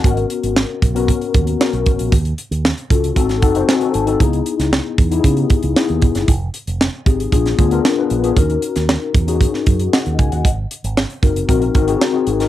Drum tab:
HH |xxxx--xxxxxx-xxx|xxxx-xxxxxxx-xxx|xxxx--xxxxxx-xxx|x-xx--xxxxxx--xx|
SD |----o-------o---|----o----o--o---|---oo-------o--o|----o----o--o---|
BD |o-----o-o-o---o-|o-----o-o-o-----|o-----o-o-o---o-|o-----o-o-o-----|

HH |xxxx--xxx-xx-xxx|x-xx-xxxxxxx--xx|
SD |---oo----o--o---|----o-------o--o|
BD |o-----o-o-o---o-|o-----o-o-o-----|